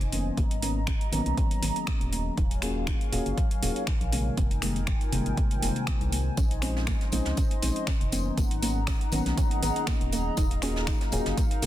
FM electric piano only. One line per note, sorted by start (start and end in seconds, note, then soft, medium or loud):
0.12 0.59 D#3 medium
0.12 0.60 F#3 medium
0.12 0.60 A#3 medium
0.12 0.60 B3 medium
0.12 0.60 C#4 medium
0.62 0.80 D#3 medium
0.62 0.80 F#3 medium
0.62 0.80 A#3 medium
0.62 0.80 B3 medium
0.62 0.80 C#4 medium
1.11 2.36 D#3 medium
1.11 2.36 F#3 medium
1.11 2.36 A#3 medium
1.11 2.36 B3 medium
1.11 2.37 C#4 loud
2.62 3.10 A#3 medium
2.62 3.10 C#4 medium
2.62 3.10 F4 medium
2.62 3.10 F#4 medium
2.62 3.10 G#4 loud
3.12 3.39 A#3 medium
3.12 3.40 C#4 medium
3.12 3.40 F4 medium
3.12 3.40 F#4 medium
3.12 3.40 G#4 loud
3.62 3.89 A#3 medium
3.62 3.90 C#4 medium
3.62 3.90 F4 medium
3.62 3.90 F#4 medium
3.62 3.90 G#4 medium
4.12 4.60 C3 medium
4.12 4.60 D#3 medium
4.12 4.60 G3 medium
4.12 4.60 G#3 medium
4.12 4.60 A#3 medium
4.62 4.80 C3 medium
4.62 4.80 D#3 medium
4.62 4.80 G3 medium
4.62 4.80 G#3 medium
4.62 4.80 A#3 medium
5.12 5.60 C3 loud
5.12 5.60 D#3 medium
5.12 5.60 G3 medium
5.12 5.60 G#3 medium
5.12 5.60 A#3 loud
5.62 6.36 C3 medium
5.62 6.36 D#3 medium
5.62 6.36 G3 medium
5.62 6.36 G#3 medium
5.62 6.37 A#3 loud
6.62 7.10 F3 medium
6.62 7.10 G#3 medium
6.62 7.10 C4 medium
6.62 7.10 C#4 medium
6.62 7.10 D#4 loud
7.12 7.39 F3 medium
7.12 7.40 G#3 medium
7.12 7.40 C4 medium
7.12 7.40 C#4 medium
7.12 7.40 D#4 loud
7.62 7.89 F3 medium
7.62 7.90 G#3 medium
7.62 7.90 C4 medium
7.62 7.90 C#4 medium
7.62 7.90 D#4 medium
8.12 8.60 D#3 medium
8.12 8.60 F#3 medium
8.12 8.60 A#3 medium
8.12 8.60 B3 medium
8.12 8.60 C#4 medium
8.62 8.80 D#3 medium
8.62 8.80 F#3 medium
8.62 8.80 A#3 medium
8.62 8.80 B3 medium
8.62 8.80 C#4 medium
9.12 10.36 D#3 loud
9.12 10.36 F#3 medium
9.12 10.36 A#3 medium
9.12 10.36 B3 medium
9.12 10.37 C#4 loud
10.62 11.10 A#3 medium
10.62 11.10 C#4 medium
10.62 11.10 F4 medium
10.62 11.10 F#4 medium
10.62 11.10 G#4 loud
11.12 11.39 A#3 loud
11.12 11.40 C#4 medium
11.12 11.40 F4 medium
11.12 11.40 F#4 medium
11.12 11.40 G#4 loud
11.62 11.66 A#3 medium
11.62 11.66 C#4 medium
11.62 11.66 F4 medium
11.62 11.66 F#4 medium
11.62 11.66 G#4 medium